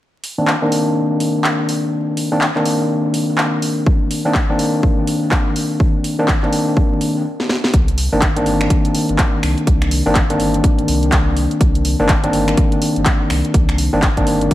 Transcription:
0.24 open hi-hat loud
0.38 0.51 D#3 medium
0.38 0.51 A#3 medium
0.38 0.51 C4 medium
0.38 0.51 D4 loud
0.47 clap loud
0.62 2.28 D#3 medium
0.62 2.28 A#3 medium
0.62 2.28 C4 medium
0.62 2.28 D4 medium
0.72 open hi-hat medium
1.20 open hi-hat medium
1.44 clap loud
1.69 open hi-hat medium
2.17 open hi-hat loud
2.32 2.45 D#3 medium
2.32 2.45 A#3 medium
2.32 2.45 C4 medium
2.32 2.45 D4 loud
2.41 clap loud
2.56 4.22 D#3 medium
2.56 4.22 A#3 medium
2.56 4.22 C4 medium
2.56 4.22 D4 medium
2.56 clap soft
2.66 open hi-hat medium
3.14 open hi-hat loud
3.38 clap loud
3.62 open hi-hat medium
3.86 kick loud
4.11 open hi-hat loud
4.25 4.38 D#3 medium
4.25 4.38 A#3 medium
4.25 4.38 C4 medium
4.25 4.38 D4 loud
4.34 kick loud
4.34 clap loud
4.49 6.15 D#3 medium
4.49 6.15 A#3 medium
4.49 6.15 C4 medium
4.49 6.15 D4 loud
4.59 open hi-hat medium
4.83 kick loud
5.07 open hi-hat loud
5.31 kick loud
5.31 clap loud
5.56 open hi-hat medium
5.80 kick loud
6.04 open hi-hat loud
6.19 6.32 D#3 medium
6.19 6.32 A#3 medium
6.19 6.32 C4 medium
6.19 6.32 D4 loud
6.28 kick loud
6.28 clap loud
6.43 7.23 D#3 medium
6.43 7.23 A#3 medium
6.43 7.23 C4 medium
6.43 7.23 D4 medium
6.43 clap soft
6.53 open hi-hat loud
6.77 kick loud
7.01 open hi-hat loud
7.40 snare soft
7.49 snare medium
7.64 snare medium
7.74 8.08 C2 loud
7.74 kick loud
7.74 closed hi-hat medium
7.88 closed hi-hat soft
7.98 open hi-hat loud
8.12 8.67 G1 medium
8.12 8.26 D#3 medium
8.12 8.26 A#3 medium
8.12 8.26 C4 medium
8.12 8.26 D4 loud
8.22 kick loud
8.22 clap loud
8.22 closed hi-hat medium
8.36 10.02 D#3 medium
8.36 10.02 A#3 medium
8.36 10.02 C4 medium
8.36 10.02 D4 loud
8.36 closed hi-hat medium
8.46 open hi-hat medium
8.61 finger snap medium
8.61 closed hi-hat medium
8.70 kick loud
8.70 closed hi-hat medium
8.85 closed hi-hat soft
8.95 open hi-hat loud
9.09 9.17 G1 medium
9.09 closed hi-hat soft
9.18 kick loud
9.18 clap loud
9.18 closed hi-hat medium
9.43 9.55 C2 medium
9.43 finger snap medium
9.43 open hi-hat medium
9.58 closed hi-hat soft
9.67 10.01 C2 loud
9.67 kick loud
9.67 closed hi-hat medium
9.82 finger snap medium
9.82 closed hi-hat soft
9.91 open hi-hat loud
10.06 10.61 G1 medium
10.06 10.19 D#3 medium
10.06 10.19 A#3 medium
10.06 10.19 C4 medium
10.06 10.19 D4 loud
10.15 kick loud
10.15 clap loud
10.15 closed hi-hat medium
10.30 11.96 D#3 medium
10.30 11.96 A#3 medium
10.30 11.96 C4 medium
10.30 11.96 D4 loud
10.30 closed hi-hat soft
10.40 open hi-hat loud
10.54 closed hi-hat soft
10.64 kick loud
10.64 closed hi-hat medium
10.79 10.86 G1 medium
10.79 closed hi-hat soft
10.88 11.47 C2 medium
10.88 open hi-hat loud
11.03 closed hi-hat soft
11.12 kick loud
11.12 clap loud
11.12 closed hi-hat medium
11.37 open hi-hat medium
11.51 closed hi-hat soft
11.61 11.95 C2 loud
11.61 kick loud
11.61 closed hi-hat medium
11.75 closed hi-hat soft
11.85 open hi-hat loud
11.99 12.54 G1 medium
11.99 12.13 D#3 loud
11.99 12.13 A#3 medium
11.99 12.13 C4 medium
11.99 12.13 D4 loud
12.09 kick loud
12.09 clap loud
12.09 closed hi-hat medium
12.24 13.89 D#3 medium
12.24 13.89 A#3 medium
12.24 13.90 C4 medium
12.24 13.90 D4 loud
12.24 closed hi-hat soft
12.33 open hi-hat loud
12.48 finger snap medium
12.48 closed hi-hat soft
12.57 kick loud
12.57 closed hi-hat medium
12.72 closed hi-hat soft
12.82 open hi-hat loud
12.96 13.04 G1 medium
12.96 closed hi-hat soft
13.05 kick loud
13.05 clap loud
13.05 closed hi-hat medium
13.30 13.42 C2 medium
13.30 finger snap medium
13.30 open hi-hat medium
13.45 closed hi-hat soft
13.54 13.88 C2 loud
13.54 kick loud
13.54 closed hi-hat medium
13.69 finger snap medium
13.69 closed hi-hat soft
13.78 open hi-hat loud
13.93 14.48 G1 medium
13.93 14.06 D#3 medium
13.93 14.06 A#3 medium
13.93 14.06 C4 medium
13.93 14.06 D4 loud
14.02 kick loud
14.02 clap loud
14.02 closed hi-hat medium
14.17 14.54 D#3 medium
14.17 14.54 A#3 medium
14.17 14.54 C4 medium
14.17 14.54 D4 loud
14.17 kick medium
14.17 closed hi-hat soft
14.27 open hi-hat loud
14.41 closed hi-hat soft
14.51 kick loud
14.51 closed hi-hat medium

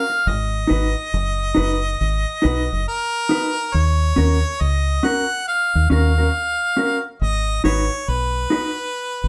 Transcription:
0.00 0.30 F5 loud
0.10 muted clean electric guitar stroke soft
0.27 0.64 G#1 loud
0.27 2.88 D#5 medium
0.67 0.94 G#1 loud
0.67 0.88 D#4 medium
0.67 0.89 F#4 medium
0.67 0.90 B4 medium
1.14 1.51 F#1 loud
1.55 1.94 F#1 medium
1.55 1.75 D#4 medium
1.55 1.76 F#4 loud
1.55 1.76 B4 medium
2.01 2.24 G#1 medium
2.42 2.68 B1 medium
2.42 2.63 D#4 medium
2.42 2.63 F#4 medium
2.42 2.63 B4 medium
2.72 2.85 F#1 medium
2.88 3.75 A#4 loud
3.29 3.50 D#4 medium
3.29 3.50 F#4 medium
3.29 3.51 B4 medium
3.74 4.11 D#2 medium
3.74 4.63 C#5 medium
4.16 4.41 D#2 medium
4.16 4.37 C#4 medium
4.16 4.37 F#4 medium
4.16 4.37 A#4 medium
4.61 4.98 C#2 medium
4.61 5.06 D#5 medium
5.03 5.23 C#4 medium
5.03 5.24 F#4 loud
5.03 5.24 A#4 medium
5.03 5.48 F#5 loud
5.48 5.88 F5 loud
5.75 5.88 D#2 medium
5.90 6.28 D#2 medium
5.90 6.10 C#4 medium
5.90 6.11 F#4 medium
5.90 6.11 A#4 medium
5.90 7.05 F5 medium
6.18 6.28 C#4 soft
6.18 6.27 F#4 medium
6.18 6.27 A#4 medium
6.77 6.97 C#4 medium
6.77 6.97 F#4 medium
6.77 6.98 A#4 medium
7.21 7.58 G#1 medium
7.21 7.62 D#5 loud
7.64 7.88 G#1 loud
7.64 7.84 D#4 medium
7.64 7.84 F#4 loud
7.64 7.85 B4 medium
7.64 8.11 C#5 medium
8.08 8.45 B1 medium
8.08 9.28 B4 medium
8.50 8.71 D#4 medium
8.50 8.71 F#4 medium
8.50 8.71 B4 loud
9.24 9.28 G#1 medium

